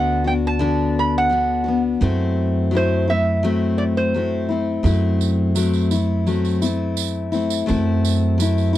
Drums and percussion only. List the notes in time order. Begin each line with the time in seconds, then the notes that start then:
4.86 tambourine
5.21 tambourine
5.56 tambourine
5.73 tambourine
5.91 tambourine
6.27 tambourine
6.45 tambourine
6.62 tambourine
6.97 tambourine
7.33 tambourine
7.50 tambourine
7.68 tambourine
8.05 tambourine
8.40 tambourine
8.58 tambourine